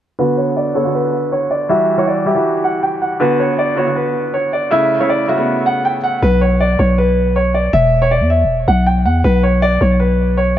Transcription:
0.19 0.63 D3 medium
0.19 0.63 B3 medium
0.19 0.64 F#4 loud
0.19 0.35 B4 loud
0.37 0.54 C#5 medium
0.57 0.73 D5 medium
0.74 0.82 D3 medium
0.74 0.83 B3 medium
0.74 0.83 A4 medium
0.74 0.92 C#5 medium
0.84 1.44 D3 medium
0.84 1.44 B3 medium
0.84 1.44 F#4 medium
0.94 1.30 B4 medium
1.32 1.48 C#5 medium
1.51 1.67 D5 medium
1.69 1.92 E3 medium
1.69 1.92 G3 medium
1.69 1.92 F#4 loud
1.69 1.96 E5 loud
1.97 2.20 E3 medium
1.97 2.20 G3 medium
1.97 2.20 F#4 medium
1.97 2.06 C#5 medium
2.07 2.24 D5 medium
2.25 2.33 E3 medium
2.25 2.34 G3 medium
2.25 2.34 G4 medium
2.25 2.62 E5 medium
2.35 2.95 E3 medium
2.35 2.95 G3 medium
2.35 2.95 F#4 medium
2.64 2.80 F#5 medium
2.83 2.99 G5 medium
3.02 3.18 F#5 medium
3.20 3.65 D3 loud
3.20 3.65 B3 medium
3.20 3.65 F#4 loud
3.20 3.37 B4 loud
3.40 3.56 C#5 medium
3.59 3.75 D5 medium
3.76 3.84 D3 medium
3.76 3.84 B3 medium
3.76 3.84 F#4 medium
3.76 3.94 C#5 medium
3.86 4.46 D3 medium
3.86 4.46 B3 medium
3.86 4.46 F#4 medium
3.96 4.32 B4 medium
4.34 4.50 C#5 medium
4.53 4.69 D5 medium
4.71 4.93 C#3 medium
4.71 4.94 A3 medium
4.71 4.94 E4 loud
4.71 4.98 E5 loud
4.99 5.22 C#3 medium
4.99 5.22 A3 medium
4.99 5.22 E4 medium
4.99 5.08 C#5 medium
5.09 5.26 D5 medium
5.28 5.35 C#3 medium
5.28 5.35 A3 medium
5.28 5.36 F#4 medium
5.28 5.64 E5 medium
5.36 5.96 C#3 medium
5.36 5.97 A3 medium
5.36 5.97 B3 medium
5.66 5.82 F#5 medium
5.85 6.01 G5 medium
6.04 6.20 F#5 medium
6.23 6.77 B1 loud
6.23 6.39 B4 loud
6.41 6.58 C#5 medium
6.60 6.77 D5 medium
6.79 7.70 B1 loud
6.79 6.95 C#5 medium
6.98 7.34 B4 medium
7.36 7.52 C#5 medium
7.54 7.71 D5 medium
7.73 8.22 E1 loud
7.73 8.00 E5 loud
8.02 8.10 C#5 medium
8.11 8.28 D5 medium
8.21 8.46 E2 loud
8.30 8.65 E5 medium
8.44 8.67 E1 loud
8.68 9.07 B1 loud
8.68 8.84 F#5 medium
8.86 9.03 G5 medium
9.06 9.23 E2 loud
9.06 9.22 F#5 medium
9.24 9.79 B1 loud
9.24 9.41 B4 loud
9.43 9.60 C#5 medium
9.62 9.79 D5 medium
9.81 10.59 B1 loud
9.81 9.98 C#5 medium
10.00 10.35 B4 medium
10.37 10.54 C#5 medium

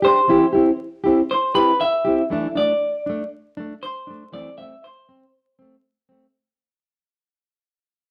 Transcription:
0.02 0.20 D4 soft
0.02 0.19 G4 medium
0.02 0.76 C5 medium
0.28 0.44 E3 medium
0.28 0.44 C4 medium
0.28 0.45 E4 medium
0.28 0.45 G4 medium
0.53 0.71 C4 soft
0.53 0.70 E4 soft
0.53 0.69 G4 soft
1.04 1.21 C4 soft
1.04 1.21 E4 medium
1.04 1.20 G4 medium
1.31 1.55 C5 medium
1.55 1.72 C4 soft
1.55 1.71 E4 soft
1.55 1.70 G4 soft
1.55 1.79 B4 medium
1.81 2.52 E5 medium
2.05 2.22 C4 soft
2.05 2.21 E4 soft
2.05 2.21 G4 soft
2.30 2.46 E3 medium
2.30 2.47 A3 medium
2.30 2.47 D4 medium
2.55 2.73 A3 soft
2.55 2.71 D4 soft
2.55 3.28 D5 medium
3.06 3.24 A3 soft
3.06 3.22 D4 soft
3.57 3.74 A3 soft
3.57 3.73 D4 medium
3.83 4.29 C5 medium
4.07 4.24 A3 soft
4.07 4.23 D4 soft
4.32 4.48 E3 medium
4.32 4.49 A3 medium
4.32 4.49 C4 medium
4.32 4.57 D5 medium
4.58 4.75 A3 soft
4.58 4.74 C4 soft
4.58 4.82 E5 medium
4.84 5.55 C5 medium
5.09 5.24 C4 medium
5.59 5.76 A3 soft
5.59 5.75 C4 medium
6.09 6.26 A3 soft
6.09 6.25 C4 soft

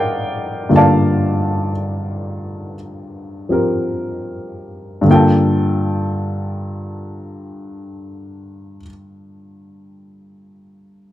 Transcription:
0.00 0.68 G2 soft
0.00 0.68 D3 soft
0.00 0.71 F3 soft
0.00 0.69 A#3 soft
0.00 0.71 C4 soft
0.00 0.69 F4 soft
0.00 0.71 G4 soft
0.00 0.70 A4 medium
0.00 3.52 A#4 medium
0.00 0.77 D5 medium
0.00 5.09 D#5 medium
0.00 0.77 F5 medium
0.00 5.09 F#5 medium
0.00 0.76 G5 medium
0.69 5.00 G2 soft
0.69 5.03 D3 soft
0.69 5.06 A#3 soft
0.69 5.07 F4 soft
0.76 2.74 D5 medium
0.76 2.74 F5 medium
0.76 2.74 A5 medium
3.49 5.06 F3 soft
3.49 5.07 C4 soft
3.49 5.07 G4 soft
3.49 5.08 A#4 soft
5.01 8.76 G2 medium
5.01 8.78 D3 medium
5.08 8.82 A#3 medium
5.08 8.85 F4 medium
5.08 8.81 G5 medium
5.14 8.88 A4 medium

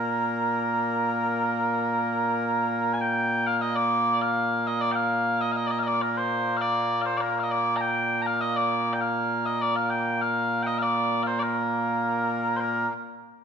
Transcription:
0.00 12.88 A#2 medium
0.00 12.88 A#3 medium
0.00 2.94 A#4 medium
2.94 3.01 G#5 medium
3.01 3.47 G5 loud
3.47 3.57 F5 loud
3.57 3.61 F5 medium
3.61 3.76 D#5 loud
3.76 4.22 D5 medium
4.22 4.67 F5 loud
4.67 4.81 D#5 medium
4.81 4.92 D5 loud
4.92 5.41 F5 loud
4.92 4.96 G5 loud
5.41 5.52 D#5 loud
5.52 5.56 F5 medium
5.56 5.67 D#5 loud
5.67 5.71 D5 medium
5.67 5.79 D#5 loud
5.79 5.87 D#5 medium
5.79 5.83 F5 medium
5.87 6.02 D5 loud
6.02 6.17 A#4 medium
6.17 6.57 C5 loud
6.57 6.61 F5 loud
6.61 7.01 D5 loud
7.01 7.17 C5 medium
7.01 7.05 F5 medium
7.17 7.39 A#4 medium
7.17 7.21 D5 medium
7.39 7.43 F5 medium
7.43 7.51 D#5 medium
7.51 7.77 D5 medium
7.77 7.81 A#5 loud
7.81 8.22 G5 loud
8.22 8.26 A#5 loud
8.26 8.41 F5 loud
8.41 8.56 D#5 loud
8.56 8.93 D5 medium
8.93 9.01 G5 medium
9.01 9.46 F5 medium
9.46 9.61 D#5 medium
9.61 9.76 D5 medium
9.76 9.90 F5 medium
9.90 10.22 G5 medium
10.22 10.63 F5 loud
10.63 10.78 D#5 loud
10.63 10.67 G5 loud
10.78 11.23 D5 medium
10.78 10.82 F5 medium
11.23 11.39 C5 medium
11.23 11.27 F5 medium
11.39 12.56 A#4 medium
11.39 11.43 D5 medium
12.56 12.88 A#4 medium
12.56 12.60 C5 medium

